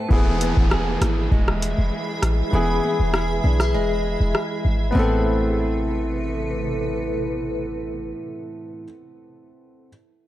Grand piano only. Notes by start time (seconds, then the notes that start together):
0.08 E3 B3
0.12 G#4
2.51 E3 B3
2.55 G#4
4.91 B3
4.95 C4
4.99 A4